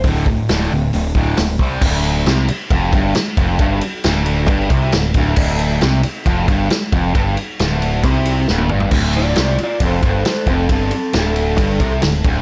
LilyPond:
<<
  \new Staff \with { instrumentName = "Electric slide guitar" } { \time 4/4 \key d \minor \tempo 4 = 135 r1 | r1 | r1 | r1 |
r1 | r8 <f' d''>8 <f' d''>8 <f' d''>8 <a' c''>8 <a' c''>8 <a' c''>8 <c' a'>8 | <c' a'>8 <c' a'>8 a'2. | }
  \new Staff \with { instrumentName = "Distorted electric guitar" } { \clef bass \time 4/4 \key d \minor <d, a, d>8 <d, a,>8 <d, a, d>8 <d, a,>8 <d, a,>8 <d, a, d>8 <d, a,>8 <c g c'>8 | d,4 c8 r8 f,8 g,8 r8 f,8 | g,8 r8 d,4 g,8 c8 d,8 d,8 | d,4 c8 r8 f,8 g,8 r8 f,8 |
g,8 r8 d,4 c4 d,8 g,8 | d,4 c8 r8 f,8 g,8 r8 f,8 | g,8 r8 d,4 g,8 c8 d,8 d,8 | }
  \new Staff \with { instrumentName = "Picked electric bass" } { \clef bass \time 4/4 \key d \minor d,,4 d,,8 d,,8 d,,8 d,,8 d,,8 c,8 | d,,4 c,8 r8 f,,8 g,,8 r8 f,,8 | g,,8 r8 d,,4 g,,8 c,8 d,,8 d,,8 | d,,4 c,8 r8 f,,8 g,,8 r8 f,,8 |
g,,8 r8 d,,4 c,4 d,,8 g,,8 | d,,4 c,8 r8 f,,8 g,,8 r8 f,,8 | g,,8 r8 d,,4 g,,8 c,8 d,,8 d,,8 | }
  \new DrumStaff \with { instrumentName = "Drums" } \drummode { \time 4/4 <hho bd>8 bd8 <hho sn>4 hho8 bd8 <hho sn>8 bd8 | <cymc bd>8 cymr8 <cymr sn>8 cymr8 <bd cymr>8 <bd cymr>8 <cymr sn>8 <bd cymr>8 | <bd cymr>8 cymr8 <cymr sn>8 cymr8 <bd cymr>8 <bd cymr>8 <cymr sn>8 <bd cymr>8 | <cymc bd>8 cymr8 <cymr sn>8 cymr8 <bd cymr>8 <bd cymr>8 <cymr sn>8 <bd cymr>8 |
<bd cymr>8 cymr8 <cymr sn>8 cymr8 <bd cymr>8 cymr8 sn16 tommh16 toml16 tomfh16 | <cymc bd>8 cymr8 <cymr sn>8 cymr8 <bd cymr>8 <bd cymr>8 <cymr sn>8 <bd cymr>8 | <bd cymr>8 cymr8 <cymr sn>8 cymr8 <bd cymr>8 <bd cymr>8 <cymr sn>8 <bd cymr>8 | }
>>